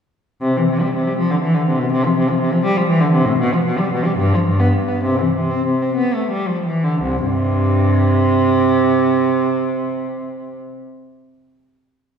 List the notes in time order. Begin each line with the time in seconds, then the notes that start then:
0.41 C3
0.57 E3
0.70 C3
0.81 G3
0.95 C3
1.08 G3
1.18 F3
1.31 D3
1.42 E3
1.54 D3
1.67 C3
1.79 B2
1.92 C3
2.06 F3
2.18 C3
2.30 F3
2.41 C3
2.53 F3
2.65 G3
2.77 F3
2.89 E3
3.01 D3
3.12 C3
3.25 A2
3.38 B2
3.54 F3
3.66 B2
3.79 G3
3.93 B2
4.06 G3
4.17 G2
4.34 F3
4.48 G2
4.60 B3
4.76 G2
4.89 B3
5.04 C3
5.20 E3
5.35 C3
5.51 C4
5.66 C3
5.82 C4
5.96 B3
6.14 A3
6.31 G3
6.48 F3
6.66 E3
6.84 D3
7.02 C2
7.24 G2 C3